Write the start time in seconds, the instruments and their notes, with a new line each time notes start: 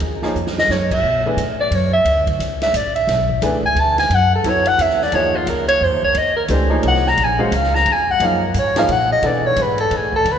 0.00 upright bass D#2, ride
0.22 upright piano F3 A#3 D#4 G#4 C#5, muted upright bass stroke, snare
0.35 upright bass F2, hi-hat pedal
0.47 snare
0.58 soprano saxophone D#5, snare
0.69 upright bass F#2, soprano saxophone C#5, snare
0.91 soprano saxophone E5, kick, crash
1.03 upright bass B2
1.26 upright piano E3 A3 D4 G#4 B4
1.37 upright bass A2, hi-hat pedal, ride
1.61 soprano saxophone D5
1.71 upright bass F#2, ride
1.75 soprano saxophone C#5
1.93 soprano saxophone E5
2.05 upright bass D2, ride
2.27 kick, ride
2.39 upright bass C#2, hi-hat pedal, ride
2.62 soprano saxophone E5, snare, ride
2.74 upright bass A1, soprano saxophone D5, hi-hat pedal, ride
2.95 soprano saxophone E5, ride
3.07 upright bass B1, snare, ride
3.29 kick
3.42 upright bass C#2, upright piano E3 A3 D4 G#4 B4, hi-hat pedal, ride
3.63 soprano saxophone G#5, kick
3.75 upright bass D2, ride
3.80 soprano saxophone A5
3.98 soprano saxophone G#5, snare, ride
4.10 upright bass F#2, ride
4.15 soprano saxophone F#5
4.35 soprano saxophone A4
4.44 upright bass D2, upright piano F#3 B3 E4 A4 C#5, hi-hat pedal, ride
4.49 soprano saxophone C#5
4.65 soprano saxophone F#5, muted upright bass stroke, ride
4.78 upright bass E2, soprano saxophone E5, hi-hat pedal, ride
4.90 snare
5.01 soprano saxophone D5, snare
5.12 upright bass D#2, upright piano F3 A#3 D#4 G#4 C#5, soprano saxophone C#5, ride
5.36 soprano saxophone F4
5.46 upright bass C#2, soprano saxophone A#4, hi-hat pedal, ride
5.69 soprano saxophone C#5, ride
5.81 upright bass F2, soprano saxophone C5
5.92 upright bass D#2
6.03 upright bass C#2, soprano saxophone C#5
6.14 upright bass D#2, soprano saxophone D#5, ride
6.36 soprano saxophone A#4
6.48 upright bass C#2, upright piano E3 A3 D4 G4 C5, hi-hat pedal, ride
6.70 upright piano F3 A#3 D#4 G#4 C#5
6.83 upright bass C2, ride
6.88 soprano saxophone F#5
6.95 snare
7.06 soprano saxophone A#5, snare
7.17 upright bass A#1, ride
7.24 soprano saxophone G#5
7.39 upright piano G#3 C#4 F#4 C5 F5
7.44 soprano saxophone C#5
7.51 upright bass C#2, soprano saxophone F5, hi-hat pedal, ride
7.64 snare
7.75 soprano saxophone A#5, snare
7.85 upright bass F2, ride
7.92 soprano saxophone G#5
8.11 soprano saxophone F#5
8.20 upright bass F#2, upright piano F3 A#3 D#4 G#4 C#5, ride
8.25 soprano saxophone F5
8.46 soprano saxophone A#4
8.54 upright bass G#2, hi-hat pedal, ride
8.59 soprano saxophone C#5
8.76 upright piano F3 A#3 D#4 G#4 C#5, soprano saxophone F5, snare, ride
8.89 upright bass A#2, soprano saxophone F#5, ride
9.12 soprano saxophone D#5
9.22 upright bass B2, upright piano E3 D4 G#4 A4 B4, ride
9.26 soprano saxophone D5
9.46 soprano saxophone C#5
9.56 upright bass G#2, hi-hat pedal, ride
9.62 soprano saxophone B4
9.78 soprano saxophone A4, ride
9.91 upright bass A2, ride
9.96 soprano saxophone G#4
10.13 soprano saxophone A4, kick
10.25 upright bass D2, ride
10.32 soprano saxophone B4